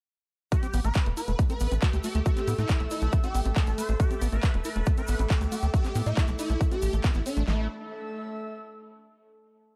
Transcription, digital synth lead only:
0.52 G4
0.85 B4
1.17 B4
1.50 B4
1.82 G4
2.04 G4
2.26 G4
2.58 E4
2.91 E4
3.24 G4
3.56 A4
3.78 C5
4.00 G4
4.32 B4
4.65 B4
4.98 B4
5.30 G4
5.52 G4
5.74 G4
6.06 E4
6.39 E4
6.72 G4
7.04 E4
7.26 D4
7.48 E4

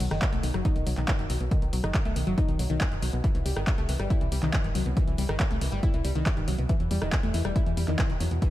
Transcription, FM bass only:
0.00 B1
0.11 F#1
0.33 B1
0.44 B1
0.54 F#1
0.76 B1
0.87 B1
0.97 B1
1.19 F#1
1.30 B1
1.40 B1
1.62 B1
1.73 B1
1.84 F#1
2.05 B1
2.16 B1
2.27 F#1
2.48 B1
2.59 B1
2.70 B1
2.91 F#1
3.02 B1
3.13 B1
3.35 C2
3.45 C2
3.56 G1
3.78 C2
3.89 C2
3.99 G1
4.21 C2
4.32 C2
4.43 C2
4.64 G1
4.75 C2
4.86 C2
5.07 C2
5.18 C2
5.29 G1
5.51 C2
5.61 C2
5.72 G1
5.94 C2
6.05 C2
6.15 C2
6.37 G1
6.48 C2
6.58 C2
6.80 E2
6.91 E2
7.02 E1
7.23 E2
7.34 E2
7.45 E1
7.66 E2
7.77 E2
7.88 E2
8.09 E1
8.20 E2
8.31 E2

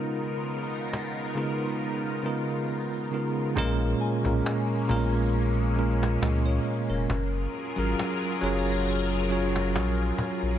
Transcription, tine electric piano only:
Already playing: C#3 G#3 B3 D#4 F4 A#4 F#5
1.35 C#3 G#3 B3 D#4 F4 A#4
2.23 C#3 G#3 B3 D#4 F4 A#4
3.11 C#3 G#3 B3 D#4 F4 A#4
3.56 A#2 G#3 C#4 F4 A#4
4.24 A#2 G#3 C#4 F4 A#4
4.88 A#2 G#3 B3 F4 A#4
4.96 C#4
5.76 A#2 G#3 C#4 F4 A#4
6.22 D#5
6.46 F4 C#5
6.90 C#4 A#4
7.76 F#3 C#4 F4 G#4 A#4
8.41 F#3 C#4 F4 G#4 C#5
9.29 F#3 C#4 F4 G#4 C#5
9.75 G#5

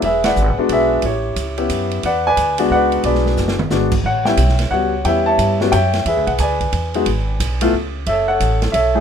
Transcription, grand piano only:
0.05 G#4 B4 E5
0.25 B4 D5 F#5
0.58 G#3 B3 D4 F#4
0.72 G#4 B4 E5
1.06 E4 G4 C#5
1.58 B3 C#4 E4 G4
2.06 B4 D5 F#5
2.27 B4 D5 G#5
2.59 G#3 B3 D4 F#4
2.72 B4 D5 F#5
3.04 G#3 B3 D4 F#4 G#4 B4 D5
3.71 G#3 B3 D4 F#4
4.06 C#5 F#5
4.26 G3 B3 C#4 E4 C#5 E5 G5
4.71 G3 B3 C#4 F#4 C#5 F#5
5.05 G3 B3 C#4 E4 C#5 E5 G5
5.26 C#5 E5 A5
5.61 G3 B3 C#4 F#4
5.72 C#5 E5 G5
6.06 G#4 B4 E5
6.27 F#5
6.40 B4 D5 G#5
6.95 G#3 B3 D#4 F#4
7.61 A3 B3 E4 F4
8.07 A4 C#5 E5
8.28 A4 C#5 F#5
8.72 A4 C#5 E5
8.95 A3 C#4 E4 G#4

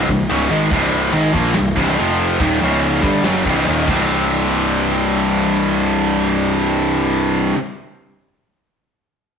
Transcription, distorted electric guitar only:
0.08 C2 G2
0.29 C#2 G#2 C#3
0.49 G#2 D#3 G#3
0.71 C2 G2 C3
1.12 G#2 D#3 G#3
1.33 A#2 F3 A#3
1.56 C2 G2
1.76 C2 G2 C3
1.98 F2 C3 F3
2.40 D#2 A#2 D#3
2.61 C#2 G#2 C#3
3.02 G2 D3 G3
3.24 F#2 C#3 F#3
3.44 C2 G2 C3
3.66 D#2 A#2 D#3
3.86 C2 G2
3.90 C3

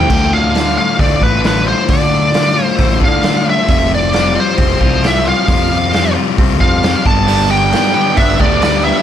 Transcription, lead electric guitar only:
Already playing: G5
0.33 F5
0.78 F5
1.00 D5
1.23 B4
1.47 B4
1.68 C5
1.90 D5
2.65 C5
3.04 F5
3.50 E5
3.95 D5
4.40 C5
5.07 E5
5.29 F5
6.61 F5
7.06 A5
7.51 G5
7.95 G5
8.17 E5
8.41 D5
8.63 D5
8.85 E5

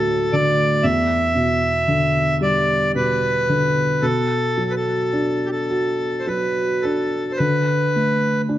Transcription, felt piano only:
Already playing: D2 A2 D3 F#3
0.33 D3
0.84 E2
1.35 B2
1.88 D3
2.41 G3
2.95 B2
3.49 D3
4.02 B2
4.57 F#3
5.13 D4
5.70 F#4
6.27 F#3
6.85 D4
7.40 D3
7.96 A3
8.49 D4

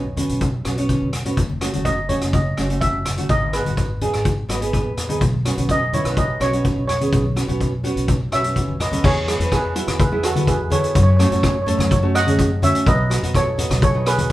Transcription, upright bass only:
Already playing: B1
0.30 B1
0.65 B1
1.01 B1
1.37 F#1
1.73 F#1
2.21 F#1
2.57 F#1
2.93 F#1
3.29 G#1
3.66 G#1
4.13 G#1
4.49 G#1
4.85 A#1
5.21 B1
5.57 B1
6.04 B1
6.40 B1
6.76 B1
7.13 B1
7.48 B1
7.96 B1
8.32 B1
8.68 B1
9.04 E2
9.40 E2
9.87 E2
10.95 F#2
11.31 F#2
11.79 F#2
12.87 B1
13.23 B1
13.70 B1

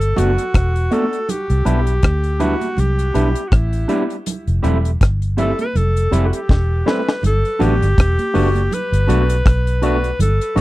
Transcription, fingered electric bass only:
Already playing: G1
0.18 F#1
0.55 E1
1.50 C2
1.66 B1
2.03 D2
2.78 C2
3.15 B1
3.52 A1
4.47 F1
4.64 E1
5.01 G1
5.75 F1
6.12 F1
6.50 E1
7.24 G1
7.61 A1
7.82 G1
7.98 E1
8.35 F#1
8.92 G1
9.09 B1
9.46 B1
10.19 G1
10.57 A1

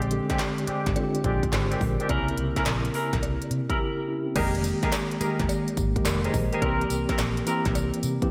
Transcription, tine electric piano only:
Already playing: D3 G#3 C4 G4
0.11 D3 G#3 C4 G4
0.96 D3 G#3 C4 F4
1.03 G4
1.53 G#4 C5
1.72 A#4 D5
2.00 G4 A#4
2.09 C#3 A#3 C4 E4
3.70 G4 A#4
3.79 E4 G4
4.08 C#4 E4
4.27 C4
4.35 D#3 G#3 A#3 G4
5.21 D#3 G#3 A#3 G4
5.96 D#3 G#3 A#3 G4
6.06 G4 A#4
6.25 G#4 C5
6.34 C5 D#5
6.53 G4 A#4
6.62 E3 A#3 C4 G4
7.46 E3 A#3 C4 G4
8.22 E3 A#3 C4 G4

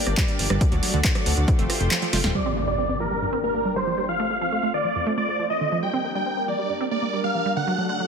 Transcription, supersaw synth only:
2.35 D5
2.67 D5
3.00 A#4
3.44 A#4
3.76 C5
4.09 F5
4.41 F5
4.74 D5
5.18 D5
5.50 D#5
5.83 G5
6.15 G5
6.48 D5
6.91 D5
7.24 F5
7.57 F#5
7.89 F#5

